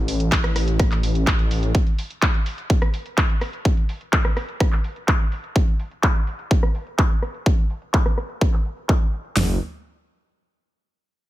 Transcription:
0.00 1.72 A1 medium
0.08 open hi-hat loud
0.20 closed hi-hat soft
0.32 kick loud
0.32 clap loud
0.32 closed hi-hat medium
0.44 cross-stick medium
0.44 closed hi-hat soft
0.56 cross-stick medium
0.56 open hi-hat loud
0.68 closed hi-hat soft
0.80 kick loud
0.80 cross-stick medium
0.80 closed hi-hat medium
0.92 clap soft
0.92 closed hi-hat soft
1.03 open hi-hat loud
1.15 closed hi-hat soft
1.27 kick loud
1.27 clap loud
1.27 closed hi-hat medium
1.39 closed hi-hat soft
1.51 open hi-hat loud
1.63 closed hi-hat soft
1.75 kick loud
1.75 closed hi-hat medium
1.87 closed hi-hat soft
1.99 open hi-hat loud
2.10 closed hi-hat soft
2.22 kick loud
2.22 clap loud
2.22 closed hi-hat medium
2.34 closed hi-hat soft
2.46 open hi-hat loud
2.58 closed hi-hat soft
2.70 kick loud
2.70 closed hi-hat medium
2.82 cross-stick medium
2.82 closed hi-hat soft
2.94 open hi-hat loud
3.06 closed hi-hat soft
3.18 kick loud
3.18 clap loud
3.18 closed hi-hat medium
3.30 closed hi-hat soft
3.41 cross-stick medium
3.41 open hi-hat loud
3.53 closed hi-hat soft
3.65 kick loud
3.65 closed hi-hat medium
3.77 closed hi-hat soft
3.89 open hi-hat loud
4.01 closed hi-hat medium
4.13 kick loud
4.13 clap loud
4.13 closed hi-hat medium
4.25 cross-stick medium
4.25 closed hi-hat soft
4.37 cross-stick medium
4.37 open hi-hat loud
4.49 closed hi-hat soft
4.60 kick loud
4.60 cross-stick medium
4.72 clap soft
4.72 closed hi-hat soft
4.84 open hi-hat loud
4.96 closed hi-hat medium
5.08 kick loud
5.08 clap loud
5.20 closed hi-hat soft
5.32 open hi-hat loud
5.44 closed hi-hat medium
5.56 kick loud
5.68 closed hi-hat soft
5.80 open hi-hat loud
5.91 closed hi-hat medium
6.03 kick loud
6.03 clap loud
6.15 closed hi-hat soft
6.27 open hi-hat loud
6.39 closed hi-hat medium
6.51 kick loud
6.63 cross-stick medium
6.63 closed hi-hat soft
6.75 open hi-hat loud
6.87 closed hi-hat medium
6.99 kick loud
6.99 clap loud
7.11 closed hi-hat soft
7.22 cross-stick medium
7.22 open hi-hat loud
7.34 closed hi-hat medium
7.46 kick loud
7.58 closed hi-hat soft
7.70 open hi-hat loud
7.82 closed hi-hat medium
7.94 kick loud
7.94 clap loud
8.06 cross-stick medium
8.18 cross-stick medium
8.18 open hi-hat loud
8.29 closed hi-hat medium
8.41 kick loud
8.41 cross-stick medium
8.53 clap soft
8.65 open hi-hat loud
8.77 closed hi-hat medium
8.89 kick loud
8.89 clap loud
9.01 closed hi-hat soft
9.13 open hi-hat loud
9.25 closed hi-hat medium
9.37 9.59 F#1 loud
9.37 snare loud
9.37 floor tom loud
9.37 open hi-hat medium

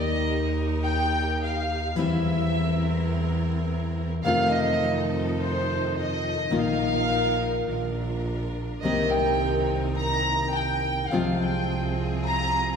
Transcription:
0.00 1.87 D#2 medium
0.00 1.95 D#3 medium
0.00 1.97 A#3 medium
0.00 1.87 D#4 medium
0.00 1.97 D#4 medium
0.00 1.87 G4 medium
0.00 1.98 G4 medium
0.00 1.87 A#4 medium
0.00 0.55 D#5 medium
0.84 1.37 G5 loud
1.42 1.99 F5 medium
1.96 4.14 E2 medium
1.96 4.22 E3 medium
1.96 4.23 G3 medium
1.96 4.14 C4 medium
1.96 4.24 C4 medium
1.96 4.14 E4 medium
1.96 4.24 E4 medium
1.96 4.14 A#4 medium
1.96 3.12 E5 medium
4.24 6.41 F2 medium
4.24 6.51 C3 medium
4.24 6.49 D#3 medium
4.24 6.51 A3 medium
4.24 6.52 C4 medium
4.24 6.40 D#4 medium
4.24 6.40 F4 medium
4.24 6.41 A4 medium
4.24 4.51 F5 loud
4.28 6.51 F4 loud
4.51 5.09 D#5 medium
5.38 5.91 C5 medium
5.97 6.53 D#5 medium
6.51 7.61 A#1 medium
6.51 7.65 D#3 medium
6.51 8.16 A#3 medium
6.51 7.61 D#4 medium
6.51 7.66 D#4 medium
6.51 7.61 F4 medium
6.51 7.66 F4 medium
6.51 7.61 A#4 medium
6.51 7.68 F5 loud
7.67 8.77 A#1 medium
7.67 8.78 D4 medium
7.67 8.78 F4 medium
7.67 8.78 A#4 medium
8.82 11.01 C2 medium
8.82 11.10 C3 medium
8.82 11.11 D#3 medium
8.82 11.12 A#3 medium
8.82 11.01 C4 medium
8.82 11.12 C4 medium
8.82 11.01 D#4 medium
8.82 11.12 G4 medium
8.82 11.01 A#4 medium
8.82 9.09 D#5 medium
9.11 9.69 G5 loud
9.97 10.51 A#5 loud
10.53 11.11 G5 medium
11.09 12.76 C3 medium
11.09 12.76 F3 medium
11.09 11.39 F5 medium
11.13 12.76 C2 medium
11.13 12.76 G#3 medium
11.13 12.76 C4 medium
11.13 12.76 F4 medium
11.13 12.76 G#4 medium
11.39 11.96 G5 medium
12.28 12.73 A#5 loud

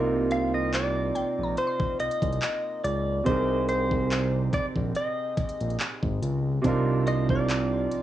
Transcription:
0.00 1.11 C2 loud
0.00 3.21 C3 medium
0.00 3.22 A#3 medium
0.00 3.22 C4 medium
0.00 3.23 D#4 medium
0.00 3.24 F4 medium
0.00 3.24 A#4 medium
0.31 0.54 F5 loud
0.31 closed hi-hat medium
0.54 0.74 D#5 loud
0.74 1.58 D5 medium
0.74 clap loud
0.74 closed hi-hat medium
1.15 1.24 A#1 soft
1.15 3.31 G5 medium
1.15 closed hi-hat medium
1.38 1.55 A#1 medium
1.43 3.55 A#5 medium
1.57 2.00 C5 medium
1.57 closed hi-hat medium
1.67 3.78 C6 medium
1.80 kick loud
2.00 2.09 C2 soft
2.00 2.84 D#5 loud
2.00 closed hi-hat medium
2.11 closed hi-hat medium
2.22 2.40 C2 loud
2.22 kick loud
2.22 closed hi-hat medium
2.33 closed hi-hat soft
2.42 clap loud
2.42 closed hi-hat medium
2.84 3.22 C#2 medium
2.84 3.24 D5 medium
2.84 closed hi-hat medium
3.24 4.49 C2 loud
3.24 6.59 C3 medium
3.24 6.60 C4 medium
3.24 6.60 D#4 medium
3.24 6.61 G4 medium
3.24 3.66 C5 medium
3.24 kick medium
3.24 closed hi-hat medium
3.29 6.62 G#4 medium
3.29 6.62 A#4 medium
3.69 4.54 C5 medium
3.69 closed hi-hat medium
3.91 kick loud
4.11 clap loud
4.11 closed hi-hat medium
4.53 4.62 A#1 soft
4.53 4.65 D5 medium
4.53 kick loud
4.53 closed hi-hat medium
4.76 4.93 A#1 loud
4.76 kick medium
4.95 5.76 D#5 medium
4.95 closed hi-hat medium
5.37 5.47 A#1 soft
5.37 kick loud
5.37 closed hi-hat medium
5.49 closed hi-hat medium
5.61 5.78 A#1 medium
5.61 closed hi-hat soft
5.70 closed hi-hat soft
5.80 clap loud
5.80 closed hi-hat medium
6.03 6.20 G#1 medium
6.03 kick loud
6.22 6.60 C#2 medium
6.22 closed hi-hat medium
6.62 7.87 C2 loud
6.62 8.03 C3 medium
6.62 8.03 C4 medium
6.62 8.03 D4 medium
6.62 8.03 D#4 medium
6.62 kick medium
6.62 closed hi-hat medium
6.67 8.03 F4 medium
6.67 8.03 A#4 medium
7.07 7.30 D#5 loud
7.07 8.03 C6 medium
7.07 closed hi-hat medium
7.29 8.03 D5 loud
7.29 kick loud
7.35 8.03 F6 medium
7.50 clap loud
7.50 closed hi-hat medium
7.91 8.01 A#1 soft
7.91 closed hi-hat medium

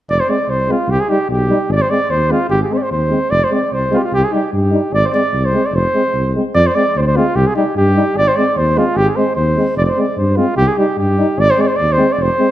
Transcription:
0.08 0.19 F1 medium
0.08 0.22 D5 loud
0.20 0.32 C5 medium
0.28 0.37 G#3 soft
0.28 0.36 C4 soft
0.28 0.52 D5 medium
0.48 0.70 C2 medium
0.48 0.73 C5 medium
0.68 0.77 G#3 soft
0.68 0.76 C4 medium
0.68 0.92 F4 medium
0.87 0.99 C2 medium
0.87 1.02 G4 loud
1.00 1.11 G#4 medium
1.09 1.18 G3 medium
1.09 1.17 D#4 medium
1.09 1.30 G4 medium
1.29 1.51 B1 medium
1.29 1.73 G4 medium
1.50 1.58 G3 medium
1.50 1.58 D#4 medium
1.69 1.80 G#1 loud
1.69 1.73 D5 loud
1.76 1.83 D5 loud
1.82 1.92 C5 medium
1.89 1.98 G#3 medium
1.89 1.98 C4 medium
1.89 2.12 D5 medium
2.10 2.32 D#2 medium
2.10 2.33 C5 medium
2.30 2.38 G#3 medium
2.30 2.38 C4 medium
2.30 2.50 F4 medium
2.50 2.61 G#1 medium
2.50 2.60 G4 loud
2.62 2.70 G4 medium
2.62 2.67 G#4 medium
2.68 2.78 G#3 soft
2.68 2.79 C4 medium
2.68 2.75 G#4 medium
2.73 2.79 C5 medium
2.77 2.84 D5 medium
2.83 2.92 C5 medium
2.91 3.13 D#2 medium
2.91 3.32 C5 medium
3.10 3.18 G#3 soft
3.10 3.18 C4 medium
3.30 3.42 F1 medium
3.30 3.46 D5 loud
3.44 3.56 C5 medium
3.50 3.58 G#3 medium
3.50 3.60 C4 medium
3.54 3.75 D5 medium
3.72 3.94 C2 medium
3.72 3.95 C5 medium
3.91 3.99 G#3 medium
3.91 4.00 C4 medium
3.91 3.99 F4 medium
3.97 4.05 G4 medium
4.04 4.13 F4 medium
4.12 4.23 C2 medium
4.12 4.26 G4 loud
4.24 4.35 G#4 medium
4.31 4.41 G3 medium
4.31 4.40 D#4 medium
4.31 4.53 G4 medium
4.53 4.75 G2 medium
4.53 4.95 G4 medium
4.71 4.81 G3 medium
4.71 4.80 D#4 medium
4.92 5.04 G#1 medium
4.92 5.06 D5 loud
5.05 5.09 C5 medium
5.05 5.11 D5 medium
5.10 5.21 C4 medium
5.10 5.13 C5 medium
5.14 5.22 G#3 medium
5.14 5.47 D5 medium
5.33 5.55 C2 medium
5.45 5.68 C5 medium
5.52 5.61 G#3 medium
5.52 5.61 C4 medium
5.66 5.77 D5 medium
5.73 5.84 F1 medium
5.73 6.35 C5 loud
5.94 6.02 G#3 medium
5.94 6.02 C4 medium
6.14 6.36 C2 medium
6.35 6.43 G#3 medium
6.35 6.43 C4 medium
6.55 6.66 F2 loud
6.55 6.68 D5 loud
6.67 6.77 C5 medium
6.75 6.83 G#3 medium
6.75 6.83 C4 medium
6.75 6.99 D5 medium
6.95 7.17 D2 medium
6.95 7.01 C5 medium
7.02 7.06 C5 medium
7.06 7.18 C5 medium
7.16 7.25 G#3 medium
7.16 7.24 C4 medium
7.16 7.37 F4 medium
7.35 7.46 C2 loud
7.35 7.49 G4 loud
7.47 7.56 G#4 medium
7.56 7.64 G3 medium
7.56 7.64 D#4 medium
7.56 7.75 G4 medium
7.76 7.98 G2 medium
7.76 8.18 G4 medium
7.96 8.04 G3 medium
7.96 8.04 D#4 medium
8.15 8.27 G#1 medium
8.15 8.29 D5 loud
8.28 8.38 C5 medium
8.36 8.45 G#3 medium
8.36 8.45 C4 medium
8.36 8.59 D5 medium
8.56 8.78 D#2 medium
8.56 8.80 C5 medium
8.76 8.84 G#3 medium
8.76 8.85 C4 medium
8.76 8.96 F4 medium
8.94 9.07 G#1 loud
8.94 9.07 G4 loud
8.94 8.98 G#4 medium
9.06 9.18 G#4 medium
9.16 9.25 G#3 medium
9.16 9.24 C4 medium
9.16 9.35 C5 medium
9.36 9.58 D#2 medium
9.36 9.74 C5 medium
9.57 9.65 G#3 medium
9.57 9.65 C4 soft
9.76 9.87 F1 loud
9.76 9.84 D5 loud
9.84 9.99 C5 medium
9.84 9.89 D5 medium
9.97 10.05 G#3 soft
9.97 10.05 C4 medium
9.97 10.19 D5 medium
10.17 10.39 G2 medium
10.17 10.38 C5 medium
10.37 10.45 G#3 medium
10.37 10.46 C4 medium
10.37 10.56 F4 medium
10.57 10.68 C2 loud
10.57 10.69 G4 loud
10.68 10.80 G#4 medium
10.77 10.85 G3 medium
10.77 10.86 D#4 medium
10.77 10.98 G4 medium
10.97 11.19 G2 medium
10.97 11.41 G4 medium
11.17 11.25 G3 medium
11.17 11.26 D#4 medium
11.37 11.49 G#1 medium
11.37 11.52 D5 loud
11.51 11.63 C5 medium
11.58 11.66 G#3 medium
11.58 11.66 C4 medium
11.58 11.69 D5 medium
11.67 11.78 C5 medium
11.76 12.00 D#2 medium
11.76 11.94 D5 medium
11.93 12.14 C5 medium
11.98 12.06 G#3 medium
11.98 12.06 C4 medium
12.12 12.24 D5 medium
12.18 12.29 F1 medium
12.22 12.51 C5 loud
12.38 12.47 G#3 medium
12.38 12.47 C4 medium

